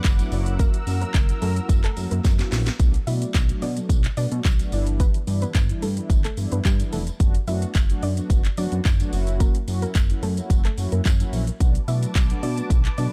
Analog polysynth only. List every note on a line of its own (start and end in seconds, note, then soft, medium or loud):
0.19 0.30 F#3 loud
0.19 0.32 A3 medium
0.19 0.32 B3 medium
0.19 0.32 D4 medium
0.19 0.31 E4 loud
0.32 0.77 F#3 loud
0.32 0.77 A#3 medium
0.32 0.77 C#4 medium
0.32 0.77 E4 medium
0.32 0.77 F#4 loud
0.87 1.11 F#3 medium
0.87 1.11 A#3 medium
0.87 1.11 C#4 medium
0.87 1.11 E4 medium
0.87 1.12 F#4 medium
1.29 1.43 F#3 medium
1.29 1.43 A#3 medium
1.29 1.43 C#4 medium
1.29 1.43 E4 medium
1.29 1.43 F#4 medium
1.56 1.80 F#3 medium
1.56 1.81 A#3 medium
1.56 1.81 C#4 medium
1.56 1.81 E4 medium
1.56 1.81 F#4 medium
1.97 2.21 F#3 medium
1.97 2.21 A#3 medium
1.97 2.21 C#4 medium
1.97 2.22 E4 medium
1.97 2.22 F#4 medium
2.39 2.63 F#3 loud
2.39 2.63 A#3 medium
2.39 2.63 C#4 medium
2.39 2.63 E4 medium
2.39 2.63 F#4 loud
2.79 2.93 F#3 medium
2.79 2.93 A3 medium
2.79 2.94 B3 medium
2.79 2.94 D4 medium
2.79 2.94 F#4 loud
3.07 3.31 F#3 medium
3.07 3.31 A3 medium
3.07 3.32 B3 medium
3.07 3.32 D4 medium
3.07 3.32 F#4 medium
3.49 3.63 F#3 medium
3.49 3.63 A3 medium
3.49 3.63 B3 medium
3.49 3.63 D4 medium
3.49 3.63 F#4 medium
3.77 4.01 F#3 medium
3.77 4.01 A3 medium
3.77 4.01 B3 medium
3.77 4.01 D4 medium
3.77 4.01 F#4 medium
4.17 4.42 F#3 medium
4.17 4.42 A3 medium
4.17 4.42 B3 medium
4.17 4.42 D4 medium
4.17 4.42 F#4 medium
4.59 4.72 F#3 medium
4.59 4.72 A3 medium
4.59 4.71 B3 medium
4.59 4.71 D4 medium
4.59 4.72 F#4 loud
4.72 5.17 E3 loud
4.72 5.17 G3 medium
4.72 5.17 B3 medium
4.72 5.17 D4 medium
4.72 5.17 E4 loud
5.27 5.52 E3 medium
5.27 5.52 G3 medium
5.27 5.52 B3 medium
5.27 5.52 D4 medium
5.27 5.52 E4 medium
5.69 5.83 E3 medium
5.69 5.83 G3 medium
5.69 5.84 B3 medium
5.69 5.84 D4 medium
5.69 5.84 E4 medium
5.97 6.21 E3 medium
5.97 6.21 G3 medium
5.97 6.21 B3 medium
5.97 6.21 D4 medium
5.97 6.21 E4 medium
6.37 6.62 E3 medium
6.37 6.62 G3 medium
6.37 6.62 B3 medium
6.37 6.62 D4 medium
6.37 6.62 E4 medium
6.79 7.03 E3 medium
6.79 7.04 G3 medium
6.79 7.04 B3 medium
6.79 7.04 D4 medium
6.79 7.04 E4 medium
7.20 7.34 F#3 medium
7.20 7.34 A3 medium
7.20 7.34 B3 medium
7.20 7.34 D4 medium
7.20 7.34 F#4 loud
7.47 7.72 F#3 medium
7.47 7.72 A3 medium
7.47 7.72 B3 medium
7.47 7.72 D4 medium
7.47 7.72 F#4 medium
7.90 8.04 F#3 medium
7.90 8.04 A3 medium
7.90 8.04 B3 medium
7.90 8.04 D4 medium
7.90 8.04 F#4 medium
8.17 8.41 F#3 medium
8.17 8.41 A3 medium
8.17 8.41 B3 medium
8.17 8.41 D4 medium
8.17 8.41 F#4 medium
8.57 8.82 F#3 medium
8.57 8.82 A3 medium
8.57 8.82 B3 medium
8.57 8.82 D4 medium
8.57 8.82 F#4 medium
9.00 9.11 F#3 loud
9.00 9.13 A3 medium
9.00 9.13 B3 medium
9.00 9.13 D4 medium
9.00 9.12 F#4 loud
9.13 9.57 F#3 loud
9.13 9.57 A#3 medium
9.13 9.57 C#4 medium
9.13 9.57 E4 medium
9.13 9.58 F#4 loud
9.68 9.92 F#3 medium
9.68 9.92 A#3 medium
9.68 9.92 C#4 medium
9.68 9.92 E4 medium
9.68 9.92 F#4 medium
10.10 10.24 F#3 medium
10.10 10.24 A#3 medium
10.10 10.24 C#4 medium
10.10 10.24 E4 medium
10.10 10.24 F#4 medium
10.37 10.61 F#3 medium
10.37 10.61 A#3 medium
10.37 10.61 C#4 medium
10.37 10.61 E4 medium
10.37 10.61 F#4 medium
10.78 11.02 F#3 medium
10.78 11.02 A#3 medium
10.78 11.02 C#4 medium
10.78 11.02 E4 medium
10.78 11.02 F#4 medium
11.20 11.44 F#3 loud
11.20 11.44 A#3 medium
11.20 11.44 C#4 medium
11.20 11.44 E4 medium
11.20 11.44 F#4 loud
11.60 11.74 F#3 medium
11.60 11.74 A3 medium
11.60 11.74 B3 medium
11.60 11.75 D4 medium
11.60 11.75 F#4 loud
11.88 12.12 F#3 medium
11.88 12.12 A3 medium
11.88 12.12 B3 medium
11.88 12.12 D4 medium
11.88 12.12 F#4 medium
12.30 12.44 F#3 medium
12.30 12.44 A3 medium
12.30 12.44 B3 medium
12.30 12.44 D4 medium
12.30 12.44 F#4 medium
12.57 12.81 F#3 medium
12.57 12.82 A3 medium
12.57 12.82 B3 medium
12.57 12.82 D4 medium
12.57 12.82 F#4 medium
12.98 13.13 F#3 medium
12.98 13.13 A3 medium
12.98 13.13 B3 medium
12.98 13.13 D4 medium
12.98 13.13 F#4 medium